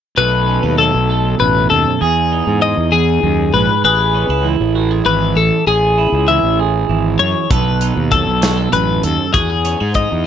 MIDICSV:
0, 0, Header, 1, 5, 480
1, 0, Start_track
1, 0, Tempo, 610376
1, 141, Time_signature, 6, 3, 24, 8
1, 8071, End_track
2, 0, Start_track
2, 0, Title_t, "Clean electric guitar"
2, 0, Program_c, 0, 27
2, 139, Note_on_c, 0, 71, 79
2, 613, Note_off_c, 0, 71, 0
2, 616, Note_on_c, 0, 69, 65
2, 1097, Note_off_c, 0, 69, 0
2, 1100, Note_on_c, 0, 71, 65
2, 1334, Note_off_c, 0, 71, 0
2, 1337, Note_on_c, 0, 69, 64
2, 1581, Note_off_c, 0, 69, 0
2, 1581, Note_on_c, 0, 68, 72
2, 2058, Note_off_c, 0, 68, 0
2, 2061, Note_on_c, 0, 75, 68
2, 2296, Note_on_c, 0, 68, 71
2, 2298, Note_off_c, 0, 75, 0
2, 2775, Note_off_c, 0, 68, 0
2, 2781, Note_on_c, 0, 71, 61
2, 3016, Note_off_c, 0, 71, 0
2, 3026, Note_on_c, 0, 71, 79
2, 3500, Note_off_c, 0, 71, 0
2, 3979, Note_on_c, 0, 71, 66
2, 4217, Note_off_c, 0, 71, 0
2, 4221, Note_on_c, 0, 69, 65
2, 4458, Note_off_c, 0, 69, 0
2, 4461, Note_on_c, 0, 68, 75
2, 4938, Note_on_c, 0, 76, 69
2, 4939, Note_off_c, 0, 68, 0
2, 5177, Note_off_c, 0, 76, 0
2, 5657, Note_on_c, 0, 73, 65
2, 5902, Note_off_c, 0, 73, 0
2, 5902, Note_on_c, 0, 71, 72
2, 6379, Note_off_c, 0, 71, 0
2, 6383, Note_on_c, 0, 69, 66
2, 6861, Note_off_c, 0, 69, 0
2, 6866, Note_on_c, 0, 71, 63
2, 7109, Note_off_c, 0, 71, 0
2, 7109, Note_on_c, 0, 69, 63
2, 7340, Note_off_c, 0, 69, 0
2, 7343, Note_on_c, 0, 68, 72
2, 7822, Note_off_c, 0, 68, 0
2, 7827, Note_on_c, 0, 75, 71
2, 8065, Note_off_c, 0, 75, 0
2, 8071, End_track
3, 0, Start_track
3, 0, Title_t, "Clean electric guitar"
3, 0, Program_c, 1, 27
3, 137, Note_on_c, 1, 47, 65
3, 142, Note_on_c, 1, 54, 53
3, 147, Note_on_c, 1, 57, 54
3, 154, Note_on_c, 1, 63, 52
3, 160, Note_on_c, 1, 69, 58
3, 369, Note_off_c, 1, 63, 0
3, 372, Note_on_c, 1, 61, 53
3, 496, Note_off_c, 1, 61, 0
3, 496, Note_on_c, 1, 63, 44
3, 609, Note_off_c, 1, 54, 0
3, 619, Note_on_c, 1, 54, 53
3, 855, Note_off_c, 1, 69, 0
3, 864, Note_on_c, 1, 69, 55
3, 1102, Note_on_c, 1, 42, 56
3, 1548, Note_off_c, 1, 54, 0
3, 1550, Note_off_c, 1, 42, 0
3, 1551, Note_off_c, 1, 69, 0
3, 1575, Note_off_c, 1, 47, 0
3, 1575, Note_off_c, 1, 63, 0
3, 1580, Note_off_c, 1, 57, 0
3, 1582, Note_on_c, 1, 40, 61
3, 1587, Note_on_c, 1, 68, 60
3, 1828, Note_on_c, 1, 63, 51
3, 2295, Note_off_c, 1, 40, 0
3, 2304, Note_on_c, 1, 40, 55
3, 2539, Note_off_c, 1, 40, 0
3, 2542, Note_on_c, 1, 42, 57
3, 2779, Note_off_c, 1, 42, 0
3, 2782, Note_on_c, 1, 44, 53
3, 2992, Note_off_c, 1, 63, 0
3, 3018, Note_off_c, 1, 44, 0
3, 3025, Note_off_c, 1, 68, 0
3, 3028, Note_on_c, 1, 68, 62
3, 3261, Note_on_c, 1, 61, 49
3, 3382, Note_off_c, 1, 61, 0
3, 3382, Note_on_c, 1, 64, 44
3, 3498, Note_on_c, 1, 52, 58
3, 3735, Note_off_c, 1, 68, 0
3, 3738, Note_on_c, 1, 66, 54
3, 3861, Note_off_c, 1, 66, 0
3, 3861, Note_on_c, 1, 68, 45
3, 3973, Note_off_c, 1, 52, 0
3, 3982, Note_on_c, 1, 52, 54
3, 4430, Note_off_c, 1, 52, 0
3, 4458, Note_off_c, 1, 64, 0
3, 4458, Note_off_c, 1, 68, 0
3, 4467, Note_on_c, 1, 68, 60
3, 4704, Note_on_c, 1, 64, 54
3, 4944, Note_on_c, 1, 52, 54
3, 5178, Note_off_c, 1, 68, 0
3, 5188, Note_on_c, 1, 68, 56
3, 5412, Note_off_c, 1, 52, 0
3, 5421, Note_on_c, 1, 52, 53
3, 5870, Note_off_c, 1, 52, 0
3, 5873, Note_off_c, 1, 64, 0
3, 5874, Note_off_c, 1, 68, 0
3, 5902, Note_on_c, 1, 47, 64
3, 5906, Note_on_c, 1, 69, 56
3, 6151, Note_on_c, 1, 63, 48
3, 6379, Note_on_c, 1, 54, 54
3, 6615, Note_off_c, 1, 69, 0
3, 6619, Note_on_c, 1, 66, 53
3, 6742, Note_off_c, 1, 66, 0
3, 6742, Note_on_c, 1, 69, 45
3, 6861, Note_off_c, 1, 47, 0
3, 6864, Note_on_c, 1, 42, 55
3, 7312, Note_off_c, 1, 54, 0
3, 7313, Note_off_c, 1, 42, 0
3, 7318, Note_off_c, 1, 63, 0
3, 7341, Note_off_c, 1, 69, 0
3, 7344, Note_on_c, 1, 66, 55
3, 7470, Note_off_c, 1, 66, 0
3, 7470, Note_on_c, 1, 68, 50
3, 7587, Note_on_c, 1, 61, 47
3, 7709, Note_off_c, 1, 61, 0
3, 7709, Note_on_c, 1, 63, 41
3, 8057, Note_off_c, 1, 68, 0
3, 8071, Note_off_c, 1, 63, 0
3, 8071, End_track
4, 0, Start_track
4, 0, Title_t, "Fingered electric bass"
4, 0, Program_c, 2, 33
4, 135, Note_on_c, 2, 35, 75
4, 454, Note_off_c, 2, 35, 0
4, 500, Note_on_c, 2, 39, 74
4, 711, Note_off_c, 2, 39, 0
4, 744, Note_on_c, 2, 35, 67
4, 1058, Note_off_c, 2, 35, 0
4, 1104, Note_on_c, 2, 33, 77
4, 1312, Note_off_c, 2, 33, 0
4, 1347, Note_on_c, 2, 39, 77
4, 1448, Note_off_c, 2, 39, 0
4, 1584, Note_on_c, 2, 40, 76
4, 1897, Note_off_c, 2, 40, 0
4, 1940, Note_on_c, 2, 44, 81
4, 2149, Note_off_c, 2, 44, 0
4, 2181, Note_on_c, 2, 40, 70
4, 2495, Note_off_c, 2, 40, 0
4, 2541, Note_on_c, 2, 39, 77
4, 2750, Note_off_c, 2, 39, 0
4, 2781, Note_on_c, 2, 34, 83
4, 2884, Note_off_c, 2, 34, 0
4, 3021, Note_on_c, 2, 33, 77
4, 3335, Note_off_c, 2, 33, 0
4, 3373, Note_on_c, 2, 37, 78
4, 3585, Note_off_c, 2, 37, 0
4, 3619, Note_on_c, 2, 33, 72
4, 3934, Note_off_c, 2, 33, 0
4, 3974, Note_on_c, 2, 32, 72
4, 4186, Note_off_c, 2, 32, 0
4, 4216, Note_on_c, 2, 33, 83
4, 4321, Note_off_c, 2, 33, 0
4, 4456, Note_on_c, 2, 33, 76
4, 4773, Note_off_c, 2, 33, 0
4, 4815, Note_on_c, 2, 37, 81
4, 5026, Note_off_c, 2, 37, 0
4, 5057, Note_on_c, 2, 33, 70
4, 5373, Note_off_c, 2, 33, 0
4, 5419, Note_on_c, 2, 32, 76
4, 5629, Note_off_c, 2, 32, 0
4, 5659, Note_on_c, 2, 42, 79
4, 5764, Note_off_c, 2, 42, 0
4, 5900, Note_on_c, 2, 35, 78
4, 6216, Note_off_c, 2, 35, 0
4, 6263, Note_on_c, 2, 39, 81
4, 6472, Note_off_c, 2, 39, 0
4, 6503, Note_on_c, 2, 35, 67
4, 6818, Note_off_c, 2, 35, 0
4, 6864, Note_on_c, 2, 33, 70
4, 7073, Note_off_c, 2, 33, 0
4, 7108, Note_on_c, 2, 39, 85
4, 7210, Note_off_c, 2, 39, 0
4, 7345, Note_on_c, 2, 40, 75
4, 7660, Note_off_c, 2, 40, 0
4, 7713, Note_on_c, 2, 44, 78
4, 7919, Note_off_c, 2, 44, 0
4, 7958, Note_on_c, 2, 40, 68
4, 8071, Note_off_c, 2, 40, 0
4, 8071, End_track
5, 0, Start_track
5, 0, Title_t, "Drums"
5, 5903, Note_on_c, 9, 36, 93
5, 5905, Note_on_c, 9, 42, 73
5, 5981, Note_off_c, 9, 36, 0
5, 5984, Note_off_c, 9, 42, 0
5, 6141, Note_on_c, 9, 42, 57
5, 6220, Note_off_c, 9, 42, 0
5, 6382, Note_on_c, 9, 42, 57
5, 6383, Note_on_c, 9, 36, 70
5, 6461, Note_off_c, 9, 36, 0
5, 6461, Note_off_c, 9, 42, 0
5, 6624, Note_on_c, 9, 42, 72
5, 6630, Note_on_c, 9, 38, 93
5, 6702, Note_off_c, 9, 42, 0
5, 6709, Note_off_c, 9, 38, 0
5, 6863, Note_on_c, 9, 42, 54
5, 6941, Note_off_c, 9, 42, 0
5, 7104, Note_on_c, 9, 42, 53
5, 7183, Note_off_c, 9, 42, 0
5, 7346, Note_on_c, 9, 36, 95
5, 7346, Note_on_c, 9, 42, 65
5, 7425, Note_off_c, 9, 36, 0
5, 7425, Note_off_c, 9, 42, 0
5, 7587, Note_on_c, 9, 42, 53
5, 7666, Note_off_c, 9, 42, 0
5, 7819, Note_on_c, 9, 42, 51
5, 7825, Note_on_c, 9, 36, 69
5, 7898, Note_off_c, 9, 42, 0
5, 7903, Note_off_c, 9, 36, 0
5, 8071, End_track
0, 0, End_of_file